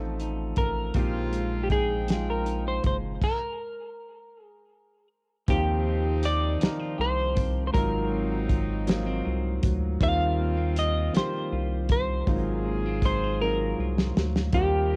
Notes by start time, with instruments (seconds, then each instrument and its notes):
Already playing: analog synth bass A1, grand piano F3 A3 C4 D#4 F#4 A4, clean electric guitar F3 A3 D#4 F#4 F5
0.20 clean electric guitar D#4, closed hi-hat
0.56 analog synth bass A1, clean electric guitar A3 A#4, kick, closed hi-hat
0.94 analog synth bass A#1, clean electric guitar A#2 G4, grand piano F3 G#3 C4, horn section G#3 C4 F4, kick, closed hi-hat
0.98 grand piano D#4 G4
1.32 clean electric guitar G#3, closed hi-hat
1.64 clean electric guitar G4
1.70 horn section C4 D#4 G5, clean electric guitar D#4 G#4, kick, closed hi-hat
2.07 grand piano F3 G#3 C4, clean electric guitar G#3, snare, closed hi-hat
2.12 grand piano D#4 F4
2.30 clean electric guitar A#4
2.45 clean electric guitar D#4, closed hi-hat
2.68 clean electric guitar C5
2.83 analog synth bass F#1, clean electric guitar G#3 C5, kick, closed hi-hat
3.22 clean electric guitar A#4, kick, crash
4.44 clean electric guitar G#4
5.48 analog synth bass D#2, clean electric guitar D#3 G4, grand piano F3 A#3 C4 D#4 F4, horn section A#3 C4 D#4, kick, closed hi-hat
5.58 grand piano G4
5.87 clean electric guitar F4
6.23 clean electric guitar G4 D5, closed hi-hat
6.60 analog synth bass C2, grand piano F3 A#3 C4 D#4, clean electric guitar D#4, snare, closed hi-hat
6.64 grand piano A#4
6.80 clean electric guitar F4
6.98 analog synth bass C2, clean electric guitar G4 C5
7.35 clean electric guitar C4, kick, closed hi-hat
7.67 clean electric guitar C5
7.72 analog synth bass G#1, clean electric guitar G#2 F4 A#4, horn section F#3 C4 D#4, grand piano F#3 A#3 C4, kick, closed hi-hat
7.77 grand piano D#4 F4
8.11 clean electric guitar C4
8.49 clean electric guitar F4, kick, closed hi-hat
8.86 grand piano F#3 A#3 C4 D#4, clean electric guitar A#3, snare, closed hi-hat
8.91 grand piano F4
9.06 clean electric guitar C4
9.25 analog synth bass C2, clean electric guitar F4
9.63 analog synth bass D2, clean electric guitar F#3, kick, closed hi-hat
10.00 analog synth bass D#2, clean electric guitar D#3 F4 F5, grand piano G3 A#3 C4 D#4 F4, horn section A#3 C4 F4, kick, closed hi-hat
10.39 clean electric guitar A#3
10.57 clean electric guitar C4
10.76 clean electric guitar F4 D#5, closed hi-hat
11.13 analog synth bass C2, grand piano G3 A#3 C4 D#4 G4, clean electric guitar C4 C5, snare, closed hi-hat
11.53 analog synth bass C2, clean electric guitar F4
11.89 clean electric guitar G3 C5, kick, closed hi-hat
12.27 analog synth bass G#1, clean electric guitar G#2 F4, grand piano F#3 A#3 C4 D#4 F4, horn section D#4 F4 G#4, kick, closed hi-hat
12.66 clean electric guitar A#3
12.86 clean electric guitar C4
13.02 clean electric guitar D#4 C5, kick, closed hi-hat
13.24 clean electric guitar F4
13.41 grand piano F#3 A#3 C4 D#4 F4, clean electric guitar C4 A#4
13.79 analog synth bass C2, clean electric guitar F4
13.98 snare
14.17 analog synth bass D2, clean electric guitar F#3, snare
14.36 snare
14.52 analog synth bass D#2, clean electric guitar D#3 G4, grand piano G3 A#3 C4 D#4, horn section F4 G4 A#4, kick, closed hi-hat
14.57 grand piano F4